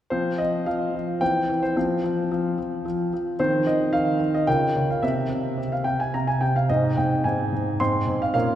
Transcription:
0.10 F3 C4 C5
0.38 F3 D#5
0.66 F3 F5
0.95 F3
1.21 E3 C4 C5 G5
1.49 E3
1.63 C5
1.76 F3 C4 C5
2.04 F3
2.31 F3
2.58 F3
2.85 F3
3.13 F3
3.39 D#3 C4 C5
3.67 D#3 D#5
3.93 D#3 F5
4.20 D#3
4.35 D#5
4.47 C#3 F4 A#4 G5
4.76 C#3
4.91 F5
5.02 C3 C4 C5 E5
5.30 C3
5.58 C3
5.72 F5
5.84 C3 G5
6.00 G#5
6.14 C3 A#5
6.27 G#5
6.41 C3 G5
6.56 F5
6.69 G#2 C4 C5 D#5
6.97 G#2 G5
7.24 G#2 G#5
7.52 G#2
7.80 G#2 C4 C5 C6
8.07 G#2
8.22 F5
8.34 A#2 C#4 A#4 F5

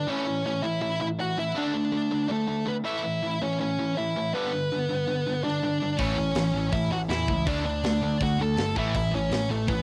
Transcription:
0.07 A2 E3 A3 C#4 C#5
0.26 A2 E3
0.46 A2 E3 C#4 C#5
0.62 A2 E3 E4 E5
0.82 A2 E3 E4 E5
1.01 A2 E3 E4 E5
1.19 A2 E3 F#4 F#5
1.38 A2 E3 E4 E5
1.55 D3 A3 D4 D5
1.74 D3 A3
1.92 D3 A3
2.11 D3 A3
2.28 D3 A3 A4
2.47 D3 A3
2.65 D3 A3 B3 B4
2.84 A2 E3 A3 E4 E5
3.03 A2 E3
3.22 A2 E3
3.41 A2 E3 C#4 C#5
3.60 A2 E3 C#4 C#5
3.79 A2 E3
3.97 A2 E3 E4 E5
4.16 A2 E3
4.34 G2 D3 G3 B3 B4
4.53 G2 D3
4.72 G2 D3
4.89 G2 D3
5.07 G2 D3
5.26 G2 D3
5.44 G2 D3 D4 D5
5.62 G2 D3
5.82 G2 D3
5.98 A1 A2 E3 A3 C#4 C#5, kick, open hi-hat
6.17 A1 A2 E3
6.35 A1 A2 E3, snare, open hi-hat
6.54 A1 A2 E3
6.72 A1 A2 E3 E4 E5, kick, open hi-hat
6.91 A1 A2 E3 F#4 F#5
7.09 E2 A2 E3 E4 E5, snare, open hi-hat
7.28 C#2 A2 E3, kick
7.46 D2 D3 A3 D4 D5, kick, open hi-hat
7.65 D2 D3 A3 D4 D5
7.84 D2 D3 A3, snare, open hi-hat
8.03 D2 D3 A3
8.21 D2 D3 A3 F#4 F#5, kick, open hi-hat
8.40 D2 D3 A3 A4 A5
8.57 G1 D3 A3, snare, open hi-hat
8.76 A1 A2 E3 A3 E4 E5, kick
8.95 A1 A2 E3 E4 E5, kick, open hi-hat
9.13 A1 A2 E3 C#4 C#5
9.32 A1 A2 E3, snare, open hi-hat
9.50 A1 A2 E3 A3 A4
9.68 A1 A2 E3 B3 B4, kick, open hi-hat

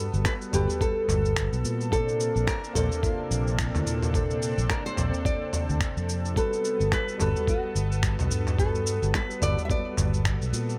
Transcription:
Already playing: G3 B3 F#4 A4 B4
0.13 G1, shaker
0.25 B4, finger snap, kick, shaker
0.42 shaker
0.51 G1 G3 F#4 G4 A4, mid tom, shaker
0.56 B4
0.70 shaker
0.81 A4, kick, shaker
1.08 G1, mid tom, shaker
1.25 shaker
1.36 finger snap, kick, shaker
1.52 B1, shaker
1.64 A#2, shaker
1.81 shaker
1.90 C3 A#3 D4 A4 C5, kick, shaker
1.95 D5
2.09 shaker
2.20 shaker
2.36 A#1, shaker
2.47 A#4, finger snap, kick, shaker
2.64 shaker
2.73 A#1 A#3 A4 C5, mid tom, shaker
2.78 D5
2.92 shaker
3.03 F4, kick, shaker
3.31 A#1, shaker
3.47 shaker
3.57 E4, finger snap, kick, shaker
3.74 D2, mid tom, shaker
3.86 A#2, shaker
4.03 mid tom, shaker
4.13 A#3 C4 A4 C5, kick, shaker
4.17 D5
4.31 shaker
4.42 shaker
4.58 A#1, shaker
4.70 A#4, finger snap, kick, shaker
4.86 C5, shaker
4.96 A#1 A#3 A4 C5, mid tom, shaker
5.00 D5
5.14 shaker
5.25 D5, kick, shaker
5.53 mid tom, shaker
5.69 D2, shaker
5.81 finger snap, kick, shaker
5.97 F2, shaker
6.09 shaker
6.25 shaker
6.34 G3 B3 F#4 A4, kick, shaker
6.39 B4
6.53 shaker
6.65 shaker
6.80 G1, shaker
6.92 B4, finger snap, kick, shaker
7.08 shaker
7.17 G1 G3 F#4 A4, mid tom, shaker
7.22 B4
7.36 shaker
7.47 F#4, kick, shaker
7.75 G1, shaker
7.92 shaker
8.03 finger snap, kick, shaker
8.19 B1, mid tom, shaker
8.31 G2, shaker
8.47 mid tom, shaker
8.57 G3 F#4 A4, kick, shaker
8.61 B4
8.75 shaker
8.87 shaker
9.02 G1, shaker
9.14 B4, finger snap, kick, shaker
9.31 shaker
9.40 G1 G3 F#4 A4 D5, mid tom, shaker
9.44 B4
9.58 shaker
9.65 E5
9.70 D5, kick, shaker
9.97 G1, mid tom, shaker
10.14 shaker
10.25 finger snap, kick, shaker
10.41 B1, shaker
10.53 A#2, shaker
10.69 shaker

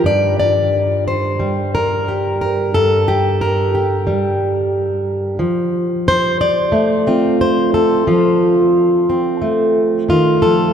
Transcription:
0.04 G2 D5
0.40 D5
1.08 C5
1.40 G3
1.75 A#4
2.08 G4
2.41 A#4
2.74 G2 A4
3.08 G4
3.41 A#4
3.75 G4
4.07 G3
5.39 F3
6.08 C5
6.41 D5
6.72 A3
7.07 C4 F4
7.41 C5
7.74 A4
8.07 F3 F4
9.09 C4
9.42 A3
10.09 D#3 F4
10.42 F3 A4

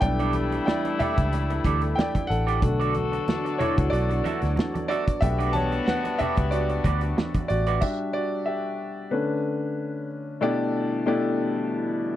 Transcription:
Already playing: D4 E4
0.01 B1 E3 G3 A3 B3 D4 E4 D5 G5, muted clean electric guitar stroke, kick, closed hi-hat, muted conga, low conga
0.19 D4 G4 A4 D5, closed hi-hat, muted conga
0.33 muted clean electric guitar stroke, closed hi-hat, high conga
0.52 muted clean electric guitar stroke, closed hi-hat
0.66 D5 G5, snare, high conga
0.85 muted clean electric guitar stroke, closed hi-hat, muted conga
0.99 D4 G4 A4 D5 E5, muted fingered electric bass stroke, closed hi-hat, low conga
1.18 C#2, muted clean electric guitar stroke, kick, closed hi-hat
1.33 muted clean electric guitar stroke, closed hi-hat, muted conga
1.50 muted clean electric guitar stroke, closed hi-hat, muted conga
1.64 D2 D4 G4 A4 D5, kick, closed hi-hat, high conga
1.82 muted clean electric guitar stroke, closed hi-hat
1.95 D5 G5, muted clean electric guitar stroke, snare, muted conga, high conga
2.15 muted clean electric guitar stroke, kick, closed hi-hat, muted conga, high conga
2.27 A1 A4 F#5
2.31 closed hi-hat
2.47 D4 G4 A4 D5, closed hi-hat
2.61 B1 D3 F#3 A3 B3 D4 F#4 A4, muted clean electric guitar stroke, kick, closed hi-hat, low conga
2.80 D4 F#4 A4 D5, closed hi-hat
2.95 muted clean electric guitar stroke, closed hi-hat, high conga
3.12 muted clean electric guitar stroke, closed hi-hat
3.28 snare, muted conga, high conga
3.45 muted clean electric guitar stroke, closed hi-hat
3.58 D4 E4 F#4 A4 C#5 D5, muted fingered electric bass stroke, closed hi-hat, low conga
3.77 C#2, muted clean electric guitar stroke, kick, closed hi-hat
3.90 B1 F#4 D5, muted clean electric guitar stroke, closed hi-hat
4.09 muted clean electric guitar stroke, closed hi-hat, muted conga
4.24 D4 F#4 A4 E5, closed hi-hat, high conga
4.42 D2, muted clean electric guitar stroke, snare, closed hi-hat
4.56 muted clean electric guitar stroke, snare, high conga
4.74 muted clean electric guitar stroke, closed hi-hat, high conga
4.88 D4 F#4 A4 D5 E5, closed hi-hat
5.06 muted clean electric guitar stroke, kick, closed hi-hat
5.21 B1 G3 A3 B3 D4 F#4 G4 E5, muted clean electric guitar stroke, kick, closed hi-hat, muted conga, low conga
5.39 D4 F#4 B4 D5, closed hi-hat, muted conga
5.53 C#5 A5, muted clean electric guitar stroke, closed hi-hat, high conga
5.72 muted clean electric guitar stroke, closed hi-hat
5.86 B4 F#5, snare, muted conga, high conga
6.05 muted clean electric guitar stroke, closed hi-hat, muted conga
6.19 D4 F#4 G4 B4 D5 E5, muted fingered electric bass stroke, closed hi-hat, low conga
6.37 C#2, muted clean electric guitar stroke, kick, closed hi-hat
6.51 F#4 D5, muted clean electric guitar stroke, closed hi-hat
6.70 muted clean electric guitar stroke, closed hi-hat
6.84 D2 D4 F#4 B4 D5, kick, closed hi-hat, high conga
7.01 muted clean electric guitar stroke, closed hi-hat
7.17 muted clean electric guitar stroke, snare, high conga
7.34 muted clean electric guitar stroke, kick, closed hi-hat, muted conga, high conga
7.48 A1 F#4 D5, closed hi-hat
7.67 D4 F#4 B4 D5, closed hi-hat
7.81 G3 D4 F#4 G4 E5, kick, crash
8.13 F#4 D5
8.46 G4 E5
9.11 D3 A3 C#4 D4 B4
10.41 B2 D3 E3 G3 A3 D4 E4 G4 D5
11.06 B2 A3 D4 E4 G4 D5

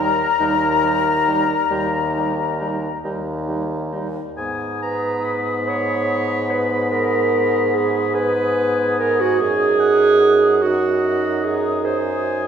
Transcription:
Already playing: D#2 G3 D#4 A#4 A#5
0.39 D#2 G3 D#4
0.83 G3 D#4
1.27 G3 D#4
1.71 D#2 G3 D#4
2.15 G3 D#4
2.60 G3 D#4
3.04 D#2 G3 D#4
3.48 G3 D#4
3.92 G3 D#4
4.37 G#2 B3 G#5 D#6
4.82 B4 A#5
5.25 B5
5.68 C#5
6.51 B4
6.91 A#4 D#6
7.74 G#4
8.14 B4 G#5
8.99 A#4
9.20 F#4
9.40 F#2 D#4 G#4 G#5
9.80 F#5
10.21 F#5
10.62 D#4 F#4 D#6
11.45 G#4
11.85 C5 G#5

